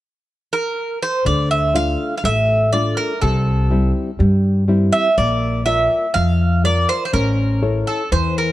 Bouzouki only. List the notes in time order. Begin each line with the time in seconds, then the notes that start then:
0.53 A#4
1.03 C5
1.26 D5
1.51 E5
1.75 F5
2.18 F5
2.25 E5
2.73 D5
2.97 A#4
3.22 A4
4.92 E5
5.18 D5
5.66 E5
6.14 F5
6.65 D5
6.89 C5
7.05 C5
7.13 A#4
7.87 A4
8.12 C5
8.38 A#4